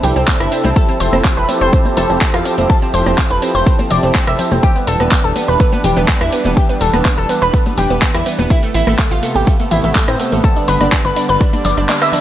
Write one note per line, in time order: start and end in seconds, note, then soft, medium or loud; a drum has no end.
0.00 0.12 C2 medium
0.00 0.72 C3 medium
0.00 4.59 C4 medium
0.00 0.72 D4 medium
0.00 4.59 E4 medium
0.00 0.10 G4 loud
0.00 4.59 A4 medium
0.00 open hi-hat loud
0.00 ride medium
0.00 high bongo soft
0.00 low conga loud
0.00 cabasa medium
0.16 0.24 C2 medium
0.16 0.22 C4 medium
0.16 closed hi-hat soft
0.16 cabasa soft
0.27 0.34 C4 medium
0.27 kick loud
0.27 clap loud
0.27 closed hi-hat loud
0.27 high conga medium
0.27 cabasa soft
0.40 0.48 G1 medium
0.40 0.46 E4 medium
0.40 cross-stick medium
0.40 closed hi-hat soft
0.40 cabasa soft
0.52 0.58 C4 medium
0.52 open hi-hat loud
0.52 ride medium
0.52 cabasa medium
0.64 0.73 C2 medium
0.64 0.71 C4 medium
0.64 closed hi-hat soft
0.64 high bongo medium
0.64 high conga loud
0.64 cabasa soft
0.76 4.59 F3 medium
0.76 4.59 G4 medium
0.76 0.83 A4 loud
0.76 kick loud
0.76 closed hi-hat medium
0.76 cabasa soft
0.89 0.95 C4 medium
0.89 closed hi-hat soft
0.89 cabasa soft
1.00 1.09 F1 loud
1.00 1.07 C5 medium
1.00 open hi-hat loud
1.00 ride medium
1.00 cabasa medium
1.13 1.21 F1 medium
1.13 1.19 C4 medium
1.13 cross-stick medium
1.13 closed hi-hat soft
1.13 high conga medium
1.13 cabasa soft
1.24 kick loud
1.24 clap loud
1.24 closed hi-hat loud
1.24 cabasa soft
1.37 1.45 F1 medium
1.37 1.43 B4 medium
1.37 closed hi-hat soft
1.37 high bongo soft
1.37 cabasa soft
1.49 1.55 C4 medium
1.49 open hi-hat loud
1.49 ride medium
1.49 high conga medium
1.49 cabasa medium
1.61 1.69 F1 medium
1.61 1.67 C5 loud
1.61 closed hi-hat soft
1.61 cabasa soft
1.73 1.79 C4 medium
1.73 kick loud
1.73 closed hi-hat medium
1.73 cabasa soft
1.85 1.92 C4 medium
1.85 closed hi-hat soft
1.85 high conga medium
1.85 cabasa soft
1.97 2.06 F1 medium
1.97 2.04 A4 medium
1.97 open hi-hat loud
1.97 ride medium
1.97 high bongo medium
1.97 low conga medium
1.97 cabasa medium
2.10 2.18 F1 medium
2.10 2.16 C4 medium
2.10 closed hi-hat soft
2.10 low conga medium
2.10 cabasa soft
2.21 kick loud
2.21 clap loud
2.21 closed hi-hat medium
2.21 high conga medium
2.21 cabasa soft
2.34 2.42 F2 medium
2.34 2.40 F4 loud
2.34 cross-stick medium
2.34 closed hi-hat soft
2.34 cabasa soft
2.45 2.52 C4 medium
2.45 open hi-hat loud
2.45 ride medium
2.45 cabasa medium
2.58 2.66 F1 medium
2.58 2.64 C4 medium
2.58 closed hi-hat soft
2.58 high conga medium
2.58 cabasa soft
2.69 2.76 A4 loud
2.69 kick loud
2.69 closed hi-hat medium
2.69 high bongo soft
2.69 cabasa soft
2.82 2.88 C4 medium
2.82 closed hi-hat soft
2.82 cabasa soft
2.94 3.03 F1 medium
2.94 3.00 C5 loud
2.94 open hi-hat loud
2.94 ride medium
2.94 cabasa medium
3.06 3.15 F1 medium
3.06 3.12 C4 medium
3.06 cross-stick medium
3.06 closed hi-hat soft
3.06 high conga medium
3.06 cabasa soft
3.18 3.25 C4 medium
3.18 kick loud
3.18 clap loud
3.18 closed hi-hat medium
3.18 cabasa soft
3.30 3.39 F1 medium
3.30 3.37 B4 medium
3.30 closed hi-hat soft
3.30 high bongo medium
3.30 cabasa soft
3.42 3.49 C4 medium
3.42 open hi-hat loud
3.42 ride medium
3.42 cabasa medium
3.55 3.63 F1 medium
3.55 3.61 C5 loud
3.55 closed hi-hat soft
3.55 cabasa soft
3.66 3.73 C4 medium
3.66 kick loud
3.66 closed hi-hat medium
3.66 cabasa soft
3.79 3.85 C4 medium
3.79 closed hi-hat soft
3.79 high conga medium
3.79 cabasa soft
3.91 3.99 F1 medium
3.91 3.97 D5 medium
3.91 open hi-hat loud
3.91 ride medium
3.91 low conga loud
3.91 cabasa medium
4.03 4.11 F1 medium
4.03 4.09 C4 medium
4.03 closed hi-hat soft
4.03 high bongo soft
4.03 cabasa soft
4.14 kick loud
4.14 clap loud
4.14 closed hi-hat medium
4.14 high conga medium
4.14 cabasa soft
4.27 4.36 F1 medium
4.27 4.33 E5 medium
4.27 cross-stick medium
4.27 closed hi-hat soft
4.27 cabasa soft
4.39 4.45 C4 medium
4.39 open hi-hat loud
4.39 ride medium
4.39 low conga medium
4.39 cabasa medium
4.52 4.60 F1 medium
4.52 4.58 C4 medium
4.52 closed hi-hat soft
4.52 high conga loud
4.52 cabasa soft
4.63 8.46 E3 medium
4.63 8.46 G3 medium
4.63 8.46 D4 medium
4.63 4.70 G4 loud
4.63 kick loud
4.63 closed hi-hat medium
4.63 cabasa soft
4.76 4.82 B3 medium
4.76 closed hi-hat soft
4.76 cabasa soft
4.87 4.96 E1 medium
4.87 4.94 A4 medium
4.87 open hi-hat loud
4.87 ride medium
4.87 cabasa medium
5.00 5.08 E1 medium
5.00 5.06 B3 medium
5.00 cross-stick medium
5.00 closed hi-hat soft
5.00 high conga medium
5.00 cabasa soft
5.12 kick loud
5.12 clap loud
5.12 closed hi-hat medium
5.12 cabasa soft
5.24 5.32 E1 medium
5.24 5.30 A4 medium
5.24 closed hi-hat soft
5.24 cabasa soft
5.36 5.42 B3 medium
5.36 open hi-hat loud
5.36 ride medium
5.36 high conga medium
5.36 cabasa medium
5.48 5.56 E1 medium
5.48 5.54 B4 loud
5.48 closed hi-hat soft
5.48 cabasa soft
5.60 5.66 B3 medium
5.60 kick loud
5.60 closed hi-hat medium
5.60 cabasa soft
5.73 5.79 B3 medium
5.73 closed hi-hat soft
5.73 high bongo medium
5.73 high conga loud
5.73 cabasa soft
5.84 5.93 E1 medium
5.84 5.91 G4 medium
5.84 open hi-hat loud
5.84 ride medium
5.84 low conga loud
5.84 cabasa medium
5.97 6.05 E1 medium
5.97 6.03 B3 medium
5.97 closed hi-hat soft
5.97 low conga medium
5.97 cabasa soft
6.08 kick loud
6.08 clap loud
6.08 closed hi-hat medium
6.08 high conga medium
6.08 cabasa soft
6.21 6.29 E2 medium
6.21 6.27 E4 loud
6.21 cross-stick medium
6.21 closed hi-hat soft
6.21 cabasa soft
6.32 6.39 B3 medium
6.32 open hi-hat loud
6.32 ride medium
6.32 cabasa medium
6.45 6.53 E1 medium
6.45 6.51 B3 medium
6.45 closed hi-hat soft
6.45 high bongo soft
6.45 high conga medium
6.45 cabasa soft
6.57 6.63 G4 loud
6.57 kick loud
6.57 closed hi-hat medium
6.57 cabasa soft
6.69 6.75 B3 medium
6.69 closed hi-hat soft
6.69 cabasa soft
6.81 6.90 E1 loud
6.81 6.87 A4 medium
6.81 open hi-hat loud
6.81 ride medium
6.81 cabasa medium
6.94 7.02 E1 medium
6.94 7.00 B3 medium
6.94 cross-stick medium
6.94 closed hi-hat soft
6.94 high conga loud
6.94 cabasa soft
7.05 kick loud
7.05 clap loud
7.05 closed hi-hat loud
7.05 high bongo medium
7.05 cabasa soft
7.18 7.26 E1 medium
7.18 7.24 A4 medium
7.18 closed hi-hat soft
7.18 cabasa soft
7.29 7.36 B3 medium
7.29 open hi-hat loud
7.29 ride medium
7.29 cabasa medium
7.42 7.50 E1 medium
7.42 7.48 B4 loud
7.42 closed hi-hat soft
7.42 cabasa soft
7.53 7.60 B3 medium
7.53 kick loud
7.53 closed hi-hat medium
7.53 cabasa soft
7.66 7.72 B3 medium
7.66 closed hi-hat soft
7.66 high conga loud
7.66 cabasa soft
7.78 7.87 E1 medium
7.78 7.84 G4 loud
7.78 open hi-hat loud
7.78 ride medium
7.78 high bongo soft
7.78 low conga loud
7.78 cabasa medium
7.90 7.98 E1 medium
7.90 7.96 B3 medium
7.90 closed hi-hat soft
7.90 cabasa soft
8.02 8.08 B3 medium
8.02 kick loud
8.02 clap loud
8.02 closed hi-hat medium
8.02 high conga medium
8.02 cabasa soft
8.15 8.23 E2 medium
8.15 8.21 E4 loud
8.15 cross-stick medium
8.15 closed hi-hat soft
8.15 cabasa soft
8.26 8.33 B3 medium
8.26 open hi-hat loud
8.26 ride medium
8.26 cabasa medium
8.38 8.47 E1 medium
8.38 8.45 B3 medium
8.38 closed hi-hat soft
8.38 high bongo medium
8.38 high conga loud
8.38 cabasa soft
8.50 10.42 C3 medium
8.50 10.42 A3 medium
8.50 12.21 B3 medium
8.50 8.57 E4 loud
8.50 kick loud
8.50 closed hi-hat medium
8.50 cabasa soft
8.63 8.69 A3 medium
8.63 closed hi-hat soft
8.63 cabasa soft
8.74 8.83 A1 medium
8.74 8.81 E4 loud
8.74 open hi-hat loud
8.74 ride medium
8.74 cabasa medium
8.87 8.95 A1 medium
8.87 8.93 A3 medium
8.87 cross-stick medium
8.87 closed hi-hat soft
8.87 high conga loud
8.87 cabasa soft
8.99 9.05 A3 medium
8.99 kick loud
8.99 clap loud
8.99 closed hi-hat loud
8.99 cabasa soft
9.11 9.19 A1 medium
9.11 9.17 F4 medium
9.11 closed hi-hat soft
9.11 high bongo soft
9.11 cabasa soft
9.23 9.29 A3 medium
9.23 open hi-hat loud
9.23 ride medium
9.23 high conga medium
9.23 cabasa medium
9.36 9.44 A1 medium
9.36 9.42 G4 loud
9.36 closed hi-hat soft
9.36 cabasa soft
9.47 9.54 A3 medium
9.47 kick loud
9.47 closed hi-hat loud
9.47 cabasa soft
9.60 9.66 A3 medium
9.60 closed hi-hat soft
9.60 high conga loud
9.60 cabasa soft
9.71 9.80 A1 loud
9.71 9.78 E4 loud
9.71 open hi-hat loud
9.71 ride medium
9.71 high bongo medium
9.71 low conga loud
9.71 cabasa medium
9.84 9.92 A1 medium
9.84 9.90 A3 medium
9.84 closed hi-hat soft
9.84 low conga medium
9.84 cabasa soft
9.95 10.02 A3 medium
9.95 kick loud
9.95 clap loud
9.95 closed hi-hat loud
9.95 high conga medium
9.95 cabasa soft
10.08 10.16 A2 medium
10.08 10.14 C4 loud
10.08 cross-stick medium
10.08 closed hi-hat soft
10.08 cabasa soft
10.20 10.26 A3 medium
10.20 open hi-hat loud
10.20 ride medium
10.20 cabasa medium
10.32 10.40 A1 medium
10.32 10.38 A3 medium
10.32 closed hi-hat soft
10.32 high conga medium
10.32 cabasa soft
10.44 12.21 D3 medium
10.44 12.21 G3 medium
10.44 10.50 A4 loud
10.44 kick loud
10.44 closed hi-hat medium
10.44 cabasa soft
10.56 10.62 D4 medium
10.56 closed hi-hat soft
10.56 cabasa soft
10.68 10.77 G1 medium
10.68 10.75 B4 loud
10.68 open hi-hat loud
10.68 ride medium
10.68 cabasa medium
10.81 10.89 G1 medium
10.81 10.87 D4 medium
10.81 cross-stick medium
10.81 closed hi-hat soft
10.81 high conga loud
10.81 cabasa soft
10.92 10.99 D4 medium
10.92 kick loud
10.92 clap loud
10.92 closed hi-hat loud
10.92 cabasa soft
11.05 11.13 G1 medium
11.05 11.11 B4 medium
11.05 closed hi-hat soft
11.05 high bongo medium
11.05 cabasa soft
11.16 11.23 D4 medium
11.16 open hi-hat loud
11.16 ride medium
11.16 cabasa medium
11.29 11.37 G1 medium
11.29 11.35 B4 loud
11.29 closed hi-hat soft
11.29 cabasa soft
11.41 11.47 D4 medium
11.41 kick loud
11.41 closed hi-hat loud
11.41 cabasa soft
11.53 11.59 D4 medium
11.53 closed hi-hat soft
11.53 high conga medium
11.53 cabasa soft
11.65 11.74 G1 medium
11.65 11.71 D5 medium
11.65 open hi-hat loud
11.65 ride medium
11.65 low conga medium
11.65 cabasa medium
11.77 11.86 G1 medium
11.77 11.83 D4 medium
11.77 closed hi-hat soft
11.77 high bongo soft
11.77 cabasa soft
11.89 11.96 D4 medium
11.89 clap loud
11.89 closed hi-hat loud
11.89 high conga medium
11.89 cabasa soft
12.02 12.08 E5 medium
12.02 cross-stick medium
12.02 closed hi-hat soft
12.02 cabasa soft
12.12 12.20 D4 medium
12.12 open hi-hat loud
12.12 ride medium
12.12 low conga medium
12.12 cabasa medium